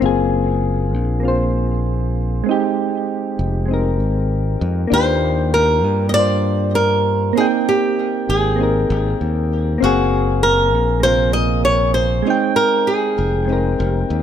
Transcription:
0.00 fingered electric bass F#1, synth keys A#3 C4 F4
0.06 synth keys G#4
0.94 fingered electric bass A#1
1.20 synth keys A#3 C4
1.25 synth keys F4 C5
2.44 synth keys G#3 C4
2.49 synth keys D#4 G4
3.39 fingered electric bass F1
3.66 synth keys G#3 C4
3.71 synth keys D#4 A#4
4.00 fingered electric bass G#1
4.61 fingered electric bass F2
4.87 synth keys A#3 D4
4.92 fingered electric bass D#2, synth keys F4 G4, nylon-string guitar C5
5.54 nylon-string guitar A#4
5.84 fingered electric bass G2
6.09 synth keys A#3, nylon-string guitar D#5
6.13 synth keys D4 F4, nylon-string guitar D5
6.19 synth keys C5
6.75 nylon-string guitar A#4
7.33 synth keys A#3 C4
7.37 synth keys D#4 G5, nylon-string guitar G#4
7.69 nylon-string guitar G4
8.29 fingered electric bass G#1, nylon-string guitar G#4
8.56 synth keys A#3 C4
8.61 synth keys D#4 A#4
8.90 fingered electric bass G#1
9.21 fingered electric bass D#2
9.78 synth keys A#3 C4
9.82 fingered electric bass F#1, nylon-string guitar F#4, synth keys G#4 F5
10.43 nylon-string guitar A#4
10.74 fingered electric bass A#1
11.00 synth keys C3 A#3, nylon-string guitar C5
11.05 synth keys F4 A#4
11.33 nylon-string guitar D#5
11.65 nylon-string guitar C#5
11.94 nylon-string guitar C5
12.22 synth keys G#3 C4
12.27 synth keys D#4 G5
12.56 nylon-string guitar A#4
12.87 nylon-string guitar G#4
13.19 fingered electric bass F1
13.45 synth keys G#3 C4
13.50 synth keys D#4 A#4
13.80 fingered electric bass F1
13.84 nylon-string guitar G4
14.10 fingered electric bass D#2

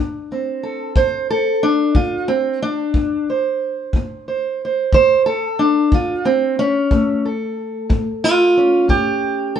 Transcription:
Already playing: steel-string acoustic guitar D2
0.32 steel-string acoustic guitar C4
0.63 steel-string acoustic guitar A4
0.96 steel-string acoustic guitar D2 C5, kick
1.30 steel-string acoustic guitar A4
1.63 steel-string acoustic guitar D4
1.95 steel-string acoustic guitar D2 F4, kick
2.28 steel-string acoustic guitar C4
2.62 steel-string acoustic guitar D4
2.94 steel-string acoustic guitar D2, kick
3.30 steel-string acoustic guitar C5
3.93 steel-string acoustic guitar D2, kick
4.28 steel-string acoustic guitar C5
4.65 steel-string acoustic guitar C5
4.93 steel-string acoustic guitar D2 C5, kick
5.26 steel-string acoustic guitar A4
5.59 steel-string acoustic guitar D4
5.92 steel-string acoustic guitar D2 F4, kick
6.25 steel-string acoustic guitar C4
6.59 steel-string acoustic guitar C#4
6.91 steel-string acoustic guitar A2 A3, kick
7.25 steel-string acoustic guitar A4
7.89 steel-string acoustic guitar A2, kick
8.24 steel-string acoustic guitar F4
8.57 steel-string acoustic guitar C#4
8.88 steel-string acoustic guitar A2 G4, kick
9.56 steel-string acoustic guitar A4

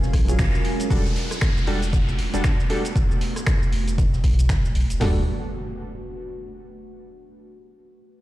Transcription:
Already playing: ambient pad F#3 G#3 C#4 F4 A#4
0.03 snare, cabasa
0.13 sub bass A#1, kick, cross-stick, closed hi-hat, open hi-hat
0.28 synth keys F#3 C#4 F4 G#4, closed hi-hat, cabasa
0.39 sub bass A#1, finger snap, kick, snare, closed hi-hat, cabasa
0.55 snare, cabasa
0.65 closed hi-hat, open hi-hat
0.80 closed hi-hat, cabasa
0.90 sub bass E1, synth keys G3 D4 F#4 A4, ambient pad A3 D4 F#4 G4 B4, kick, closed hi-hat, downlifter, cabasa
1.05 snare, cabasa
1.16 closed hi-hat, open hi-hat
1.31 cross-stick, closed hi-hat, cabasa
1.41 finger snap, kick, cross-stick, snare, closed hi-hat, cabasa
1.57 cabasa
1.67 sub bass E1, synth keys G3 D4 F#4 A4, closed hi-hat, open hi-hat
1.82 closed hi-hat, cabasa
1.93 kick, closed hi-hat, cabasa
2.09 cabasa
2.19 sub bass E1, closed hi-hat, open hi-hat
2.34 sub bass E1, synth keys G3 D4 F#4 A4, closed hi-hat, cabasa
2.44 finger snap, kick, snare, closed hi-hat, cabasa
2.60 snare, cabasa
2.70 synth keys G3 D4 F#4 A4, closed hi-hat, open hi-hat
2.85 closed hi-hat, cabasa
2.96 sub bass E1, kick, closed hi-hat, cabasa
3.11 cabasa
3.21 closed hi-hat, open hi-hat
3.36 cross-stick, closed hi-hat, cabasa
3.46 finger snap, kick, cross-stick, snare, closed hi-hat, cabasa
3.63 cabasa
3.73 sub bass E1, closed hi-hat, open hi-hat
3.88 closed hi-hat, cabasa
3.98 kick, closed hi-hat, cabasa
4.13 snare, cabasa
4.24 sub bass B1, kick, closed hi-hat, open hi-hat
4.39 closed hi-hat, cabasa
4.49 finger snap, kick, snare, closed hi-hat, cabasa
4.65 sub bass D1, snare, cabasa
4.75 sub bass B1, closed hi-hat, open hi-hat
4.90 sub bass E1, closed hi-hat, cabasa
5.00 sub bass E1, synth keys G3 D4 F#4 A4, snare, floor tom, open hi-hat, impact

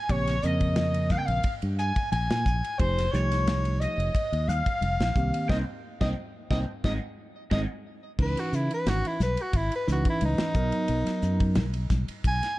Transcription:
Already playing: soprano saxophone G#5
0.09 fingered electric bass A#1, tine electric piano C#3 A#3 C4 G4, soprano saxophone C#5, overdriven electric guitar C#5, kick, ride
0.27 snare, ride
0.42 fingered electric bass F2, tine electric piano C#3 A#3 C4 A#4, soprano saxophone D#5, overdriven electric guitar D#5, hi-hat pedal
0.60 kick, ride
0.76 snare, ride, muted conga, high conga
0.94 ride
1.09 soprano saxophone F5, overdriven electric guitar F5, kick, snare, hi-hat pedal, high conga
1.18 soprano saxophone G5, overdriven electric guitar G5
1.26 fingered electric bass A#1, soprano saxophone F5, overdriven electric guitar F5, ride
1.43 muted fingered electric bass stroke, kick, ride, muted conga
1.62 fingered electric bass G2, ride
1.79 soprano saxophone G#5, overdriven electric guitar G#5, hi-hat pedal
1.96 kick, ride
2.12 fingered electric bass A#1, soprano saxophone G#5, overdriven electric guitar G#5, ride, high conga
2.30 fingered electric bass A#2, snare, ride
2.46 fingered electric bass A#1, kick, hi-hat pedal
2.64 ride
2.79 fingered electric bass F1, tine electric piano F3 A3 D#4 G4, soprano saxophone C5, overdriven electric guitar C5, kick, ride, muted conga
2.98 snare, ride
3.12 fingered electric bass C2, tine electric piano F3 A3 D#4 G4, soprano saxophone C#5, overdriven electric guitar C#5, hi-hat pedal
3.32 snare, ride
3.47 snare, ride, muted conga, high conga
3.65 ride
3.80 soprano saxophone D#5, overdriven electric guitar D#5, hi-hat pedal
3.98 fingered electric bass F1, ride
4.15 kick, ride, muted conga
4.32 fingered electric bass D#2, ride
4.48 soprano saxophone F5, overdriven electric guitar F5, hi-hat pedal, muted conga, high conga
4.66 kick, ride
4.81 fingered electric bass F1, ride, high conga
5.00 fingered electric bass A#1, snare, ride
5.15 fingered electric bass C2, tine electric piano D#3 A#3 C4 G4, kick, hi-hat pedal
5.34 ride
5.49 fingered electric bass C2, tine electric piano A#3 C4 D#4, overdriven electric guitar C5 D#5 G5, soprano saxophone D#5, kick, snare, high conga
6.01 fingered electric bass C2, tine electric piano A#3 C4 D#4, overdriven electric guitar C5 D#5 G5, soprano saxophone D#5, kick, snare, high conga
6.50 fingered electric bass C2, tine electric piano A#3 C4 D#4, overdriven electric guitar C5 D#5 G5, soprano saxophone D#5, kick, snare, high conga
6.84 fingered electric bass G#1, tine electric piano G#3 C4 D#4, soprano saxophone D#5, overdriven electric guitar D#5 F#5 G#5, kick, snare, high conga
7.51 fingered electric bass G#1, tine electric piano G#3 C4 D#4, overdriven electric guitar D#5 F#5 G#5, soprano saxophone D#5, kick, snare, high conga
8.19 fingered electric bass C#2, tine electric piano E3 C#4 D#4 B4, soprano saxophone B4, kick, crash, muted conga
8.37 soprano saxophone F#4, snare, ride
8.53 fingered electric bass C#3, soprano saxophone E4, hi-hat pedal
8.71 soprano saxophone B4, ride
8.87 fingered electric bass G#1, soprano saxophone F#4, snare, ride, muted conga, high conga
9.05 soprano saxophone E4, ride
9.20 fingered electric bass B1, soprano saxophone B4, snare, hi-hat pedal, high conga
9.37 ride
9.42 soprano saxophone F#4
9.53 fingered electric bass G#1, soprano saxophone E4, kick, ride, muted conga
9.72 soprano saxophone B4, ride
9.88 fingered electric bass C#2, tine electric piano E3 C#4 D#4 B4, snare, hi-hat pedal, muted conga
9.92 soprano saxophone F#4
10.05 kick, ride
10.09 soprano saxophone E4
10.21 fingered electric bass C#2, ride, high conga
10.25 soprano saxophone D#4
10.38 muted fingered electric bass stroke, snare, ride
10.54 fingered electric bass B1, tine electric piano F#3 B3 D#4 A#4, kick, hi-hat pedal
10.72 ride
10.88 fingered electric bass B1, ride, muted conga
11.07 snare, ride
11.22 fingered electric bass F#2, hi-hat pedal
11.40 kick, ride
11.55 fingered electric bass B1, snare, ride, muted conga, high conga, low conga
11.74 ride
11.90 fingered electric bass B1, kick, snare, hi-hat pedal, high conga
12.08 muted fingered electric bass stroke, ride
12.24 fingered electric bass B1, soprano saxophone G#5, kick, ride, muted conga
12.43 snare, ride

